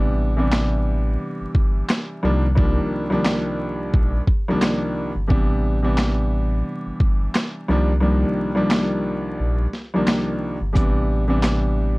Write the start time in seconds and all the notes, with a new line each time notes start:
Already playing: A1 C3 E3 G3 B3 D4
0.37 C3 E3 G3 B3 D4
0.52 snare, clap
1.41 G1
1.55 G1, kick
1.89 snare, clap
2.23 C2 D#3 F3 G3 A#3 D4
2.55 C2 D#3 F3 G3 A#3 D4, kick
3.10 C2 D#3 F3 G3 A#3 D4
3.25 snare, clap
3.94 A#1, kick
4.27 kick
4.48 C2 D#3 F3 G3 A#3 D4
4.62 snare, clap
5.16 G1
5.27 A1 C3 E3 G3 B3 D4, kick
5.83 C3 E3 G3 B3 D4
5.98 snare, clap
6.86 G1
7.00 G1, kick
7.35 snare, clap
7.68 C2 D#3 F3 G3 A#3 D4
8.00 C2 D#3 F3 G3 A#3 D4
8.55 C2 D#3 F3 G3 A#3 D4
8.70 snare, clap
9.40 A#1
9.73 snare
9.94 C2 D#3 F3 G3 A#3 D4
10.07 snare, clap
10.61 G1
10.73 A1 C3 E3 G3 B3 D4, kick, closed hi-hat
11.28 C3 E3 G3 B3 D4
11.43 snare, clap, closed hi-hat